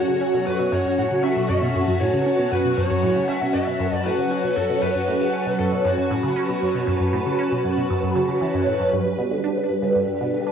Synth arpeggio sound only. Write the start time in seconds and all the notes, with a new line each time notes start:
0.08 C#3
0.21 C#4
0.34 B2
0.47 F#2
0.59 B2
0.72 F#2
0.85 F#2
0.98 A2
1.11 C#3
1.24 C#4
1.36 B2
1.49 F#2
1.62 B2
1.75 F#2
1.87 F#2
2.00 A2
2.13 C#3
2.26 C#4
2.39 B2
2.51 F#2
2.64 B2
2.77 F#2
2.90 F#2
3.03 A2
3.16 C#3
3.28 C#4
3.41 B2
3.54 F#2
3.67 B2
3.80 F#2
3.92 F#2
4.05 A2
4.18 C#3
4.31 C#4
4.44 B2
4.56 F#2
4.69 B2
4.82 F#2
4.95 F#2
5.08 A2
5.21 C#3
5.34 C#4
5.46 B2
5.59 F#2
5.72 B2
5.85 F#2
5.98 F#2
6.11 A2
6.23 C#3
6.36 C#4
6.49 B2
6.62 F#2
6.75 B2
6.87 F#2
7.00 F#2
7.13 A2
7.26 C#3
7.39 C#4
7.51 B2
7.64 F#2
7.77 B2
7.90 F#2
8.03 F#2
8.16 C#3
8.28 C#3
8.41 E3
8.54 F#2
8.67 A2
8.80 F#2
8.93 G2
9.05 G2
9.18 B2
9.31 D3
9.44 D4
9.57 C#3
9.70 G2
9.82 C#3
9.95 G2
10.08 G2
10.21 B2
10.34 D3
10.46 D4